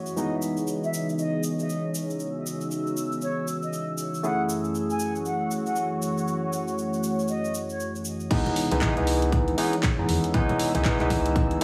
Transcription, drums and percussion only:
0.06 shaker
0.17 shaker
0.42 shaker
0.57 shaker
0.67 shaker
0.84 shaker
0.94 shaker
1.09 shaker
1.19 shaker
1.43 shaker
1.59 shaker
1.69 shaker
1.95 shaker
2.10 shaker
2.20 shaker
2.46 shaker
2.61 shaker
2.71 shaker
2.87 shaker
2.97 shaker
3.12 shaker
3.21 shaker
3.48 shaker
3.62 shaker
3.73 shaker
3.98 shaker
4.14 shaker
4.24 shaker
4.49 shaker
4.64 shaker
4.75 shaker
4.90 shaker
4.99 shaker
5.15 shaker
5.25 shaker
5.51 shaker
5.66 shaker
5.76 shaker
6.02 shaker
6.18 shaker
6.28 shaker
6.53 shaker
6.68 shaker
6.78 shaker
6.93 shaker
7.03 shaker
7.19 shaker
7.28 shaker
7.44 shaker
7.54 shaker
7.70 shaker
7.80 shaker
7.95 shaker
8.05 shaker
8.20 shaker
8.31 kick, closed hi-hat, crash
8.46 closed hi-hat, muted conga, low conga
8.56 open hi-hat
8.71 closed hi-hat, high conga, low conga
8.81 kick, clap, closed hi-hat
8.97 closed hi-hat, low conga
9.07 open hi-hat
9.22 closed hi-hat
9.32 kick, closed hi-hat
9.48 closed hi-hat, high conga
9.58 open hi-hat
9.73 closed hi-hat
9.83 kick, clap, closed hi-hat
10.09 open hi-hat, high conga
10.24 closed hi-hat
10.34 kick, closed hi-hat
10.49 closed hi-hat, muted conga, low conga
10.59 open hi-hat
10.74 closed hi-hat, high conga, low conga
10.85 kick, clap, closed hi-hat
11.00 clap, closed hi-hat, low conga
11.10 kick, open hi-hat, muted conga
11.26 closed hi-hat
11.36 kick, closed hi-hat
11.51 closed hi-hat, high conga

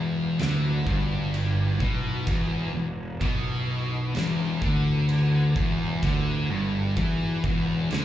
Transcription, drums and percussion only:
0.39 snare, crash
0.87 kick
1.34 crash
1.80 kick
2.27 kick, crash
3.21 kick, crash
4.15 snare, crash
4.62 kick
5.09 crash
5.56 kick
6.03 kick, crash
6.97 kick, crash
7.44 kick
7.91 snare, crash

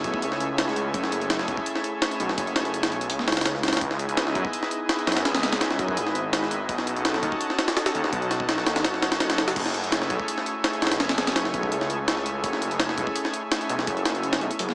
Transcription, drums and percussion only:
0.04 kick, closed hi-hat
0.14 kick
0.22 closed hi-hat
0.32 snare
0.40 closed hi-hat
0.58 snare, closed hi-hat
0.68 snare
0.76 closed hi-hat
0.94 kick, closed hi-hat
1.04 snare
1.12 closed hi-hat
1.21 closed hi-hat
1.30 snare, closed hi-hat
1.39 snare
1.48 kick, closed hi-hat
1.57 kick
1.66 closed hi-hat
1.75 snare
1.84 closed hi-hat
2.02 snare, closed hi-hat
2.11 closed hi-hat
2.20 closed hi-hat
2.29 snare
2.38 kick, closed hi-hat
2.47 closed hi-hat
2.56 snare, closed hi-hat
2.65 closed hi-hat
2.74 closed hi-hat
2.83 snare, closed hi-hat
2.92 closed hi-hat
3.01 closed hi-hat
3.10 closed hi-hat
3.19 snare
3.28 snare, closed hi-hat
3.32 snare, closed hi-hat
3.37 snare, closed hi-hat
3.41 snare, closed hi-hat
3.46 snare, closed hi-hat
3.55 snare
3.63 snare, closed hi-hat
3.68 snare, closed hi-hat
3.73 snare, closed hi-hat
3.77 snare, closed hi-hat
3.81 kick, closed hi-hat
3.91 snare
3.99 closed hi-hat
4.09 closed hi-hat
4.17 snare, closed hi-hat
4.27 snare
4.35 kick, closed hi-hat
4.45 kick
4.53 closed hi-hat
4.63 snare
4.71 closed hi-hat
4.89 snare, closed hi-hat
4.99 closed hi-hat
5.07 snare, closed hi-hat
5.12 snare, closed hi-hat
5.17 snare, closed hi-hat
5.25 snare, closed hi-hat
5.35 snare, closed hi-hat
5.43 snare, closed hi-hat
5.53 snare, closed hi-hat
5.61 snare, closed hi-hat
5.71 snare
5.79 kick, closed hi-hat
5.88 kick
5.97 closed hi-hat
6.07 snare
6.15 closed hi-hat
6.33 snare, closed hi-hat
6.43 snare
6.51 closed hi-hat
6.69 kick, closed hi-hat
6.78 snare
6.87 closed hi-hat
6.96 closed hi-hat
7.05 snare, closed hi-hat
7.14 snare
7.23 kick, closed hi-hat
7.32 kick
7.41 closed hi-hat
7.50 snare
7.59 snare, closed hi-hat
7.68 snare, closed hi-hat
7.77 snare, closed hi-hat
7.86 snare, closed hi-hat
7.95 closed hi-hat
8.04 snare
8.13 kick, closed hi-hat
8.22 closed hi-hat
8.31 snare, closed hi-hat
8.40 kick
8.49 snare, closed hi-hat
8.58 snare
8.66 snare, closed hi-hat
8.76 snare, closed hi-hat
8.84 snare, closed hi-hat
8.94 snare
9.02 snare, closed hi-hat
9.12 snare, closed hi-hat
9.20 snare, closed hi-hat
9.30 snare, closed hi-hat
9.38 snare, closed hi-hat
9.48 snare, closed hi-hat
9.56 kick, closed hi-hat, crash
9.66 snare
9.74 closed hi-hat
9.84 closed hi-hat
9.92 snare, closed hi-hat
10.02 snare
10.10 kick, closed hi-hat
10.20 kick
10.28 closed hi-hat
10.38 snare
10.46 closed hi-hat
10.64 snare, closed hi-hat
10.73 closed hi-hat
10.82 snare, closed hi-hat
10.87 snare, closed hi-hat
10.92 snare, closed hi-hat
11.00 snare, closed hi-hat
11.09 snare, closed hi-hat
11.18 snare, closed hi-hat
11.27 snare, closed hi-hat
11.36 snare, closed hi-hat
11.45 snare
11.54 kick, closed hi-hat
11.63 kick
11.72 closed hi-hat
11.81 snare
11.90 closed hi-hat
12.08 snare, closed hi-hat
12.17 snare
12.26 closed hi-hat
12.44 kick, closed hi-hat
12.53 snare
12.62 closed hi-hat
12.71 closed hi-hat
12.80 snare, closed hi-hat
12.89 snare
12.98 kick, closed hi-hat
13.07 kick
13.16 closed hi-hat
13.25 snare
13.34 closed hi-hat
13.52 snare, closed hi-hat
13.61 closed hi-hat
13.69 closed hi-hat
13.79 snare
13.87 kick, closed hi-hat
13.97 closed hi-hat
14.05 snare, closed hi-hat
14.15 closed hi-hat
14.23 closed hi-hat
14.33 snare, closed hi-hat
14.41 closed hi-hat
14.51 closed hi-hat
14.59 closed hi-hat
14.69 snare

